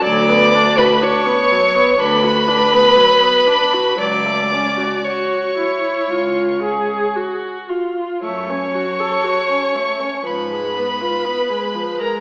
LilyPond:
<<
  \new Staff \with { instrumentName = "Violin" } { \time 4/4 \key fis \minor \tempo 4 = 59 d'''8. b''16 cis'''4 b''2 | d'''4 cis'''2 r4 | cis'''2 ces'''4.~ ces'''16 ais''16 | }
  \new Staff \with { instrumentName = "Violin" } { \time 4/4 \key fis \minor d''8. b'16 cis''4 b'2 | d''4 cis''2 r4 | cis''2 ces''4.~ ces''16 ais'16 | }
  \new Staff \with { instrumentName = "Viola" } { \time 4/4 \key fis \minor fis16 b16 d'16 fis'16 d'16 b16 fis16 b16 d'16 fis'16 d'16 b16 fis16 b16 d'16 fis'16 | fis16 a16 cis'16 fis'16 fis'8 e'8 eis'8 gis'8 fis'8 eis'8 | a16 cis'16 fis'16 a'16 fis'16 cis'16 a16 cis'16 f16 aes16 ces'16 f'16 ces'16 aes16 f16 aes16 | }
  \new Staff \with { instrumentName = "Cello" } { \clef bass \time 4/4 \key fis \minor d,4 r4 d,4 r4 | cis,4 r4 cis,4 r4 | fis,4 r4 aes,4 r4 | }
>>